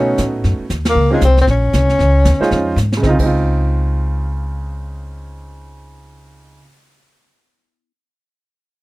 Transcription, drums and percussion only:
0.18 kick, snare, hi-hat pedal
0.44 brush sweep, kick, snare
0.70 kick, snare, hi-hat pedal
0.85 snare, ride
0.95 brush sweep
1.21 kick, snare, hi-hat pedal
1.37 snare
1.47 brush sweep, kick, snare
1.73 kick, snare, hi-hat pedal
1.89 snare
1.99 brush sweep, kick, snare
2.25 kick, snare, hi-hat pedal
2.43 snare
2.51 brush sweep, kick, snare
2.77 snare, hi-hat pedal
2.92 snare
3.03 kick, snare
3.19 kick, crash

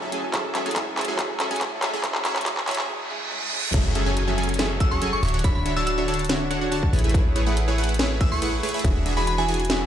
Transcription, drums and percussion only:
0.12 closed hi-hat
0.33 kick, clap, closed hi-hat
0.55 clap, closed hi-hat
0.66 closed hi-hat
0.71 closed hi-hat
0.76 kick, clap, closed hi-hat
0.97 clap, closed hi-hat
1.01 closed hi-hat
1.05 closed hi-hat
1.19 kick, clap, closed hi-hat
1.40 clap, closed hi-hat
1.51 closed hi-hat
1.56 closed hi-hat
1.61 kick, clap, closed hi-hat
1.82 clap, closed hi-hat
2.04 kick, clap, closed hi-hat
2.15 clap
2.25 clap, closed hi-hat
2.36 clap, closed hi-hat
2.41 closed hi-hat
2.46 kick, clap, closed hi-hat
2.57 clap
2.67 clap, closed hi-hat
2.71 closed hi-hat
2.75 clap, closed hi-hat
3.31 high tom
3.42 high tom
3.64 mid tom
3.74 kick, closed hi-hat, crash
3.95 closed hi-hat
4.17 closed hi-hat
4.38 closed hi-hat
4.43 closed hi-hat
4.49 closed hi-hat
4.54 closed hi-hat
4.59 snare, closed hi-hat
4.80 kick, closed hi-hat
5.02 closed hi-hat
5.23 open hi-hat
5.28 closed hi-hat
5.34 closed hi-hat
5.39 closed hi-hat
5.44 kick, closed hi-hat
5.66 closed hi-hat
5.87 closed hi-hat
6.08 closed hi-hat
6.14 closed hi-hat
6.19 closed hi-hat
6.25 closed hi-hat
6.29 snare, closed hi-hat
6.51 closed hi-hat
6.72 closed hi-hat
6.83 kick
6.93 open hi-hat
6.99 closed hi-hat
7.04 closed hi-hat
7.09 closed hi-hat
7.14 kick, closed hi-hat
7.36 closed hi-hat
7.57 closed hi-hat
7.78 closed hi-hat
7.84 closed hi-hat
7.89 closed hi-hat
7.94 closed hi-hat
7.99 snare, closed hi-hat
8.21 kick, closed hi-hat
8.42 closed hi-hat
8.63 open hi-hat
8.69 closed hi-hat
8.74 closed hi-hat
8.79 closed hi-hat
8.84 kick, closed hi-hat
9.06 closed hi-hat
9.27 closed hi-hat
9.48 closed hi-hat
9.54 closed hi-hat
9.60 closed hi-hat
9.65 closed hi-hat
9.70 snare, closed hi-hat

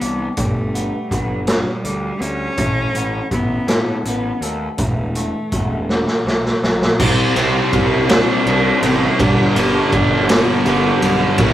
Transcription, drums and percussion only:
0.01 closed hi-hat
0.37 kick, closed hi-hat
0.75 closed hi-hat
1.11 kick, closed hi-hat
1.47 snare, closed hi-hat
1.85 closed hi-hat
2.21 closed hi-hat
2.57 kick, closed hi-hat
2.95 closed hi-hat
3.31 kick, closed hi-hat
3.68 snare, closed hi-hat
4.05 closed hi-hat
4.42 closed hi-hat
4.78 kick, closed hi-hat
5.15 closed hi-hat
5.52 kick, closed hi-hat
5.89 snare
6.07 snare
6.27 snare
6.46 snare
6.63 snare
6.82 snare
7.00 kick, crash
7.36 ride
7.73 kick, ride
8.09 snare, ride
8.47 ride
8.83 ride
9.20 kick, ride
9.56 ride
9.92 kick, ride
10.29 snare, ride
10.66 ride
11.02 ride
11.38 kick, ride

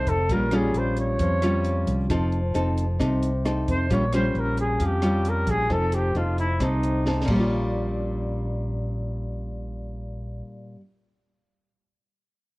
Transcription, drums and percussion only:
0.07 kick, closed hi-hat
0.29 kick, closed hi-hat
0.51 cross-stick, closed hi-hat
0.75 closed hi-hat
0.97 closed hi-hat
1.19 kick, closed hi-hat
1.42 cross-stick, closed hi-hat
1.64 closed hi-hat
1.87 kick, closed hi-hat
2.10 kick, cross-stick, closed hi-hat
2.32 closed hi-hat
2.55 closed hi-hat
2.78 closed hi-hat
3.00 kick, cross-stick, closed hi-hat
3.23 closed hi-hat
3.46 cross-stick, closed hi-hat
3.68 kick, closed hi-hat
3.90 kick, closed hi-hat
4.13 cross-stick, closed hi-hat
4.35 closed hi-hat
4.57 closed hi-hat
4.80 kick, closed hi-hat
5.02 cross-stick, closed hi-hat
5.25 closed hi-hat
5.47 kick, closed hi-hat
5.70 kick, cross-stick, closed hi-hat
5.92 closed hi-hat
6.15 closed hi-hat
6.38 closed hi-hat
6.60 kick, cross-stick, closed hi-hat
6.83 closed hi-hat
7.06 snare
7.21 snare
7.28 kick, crash

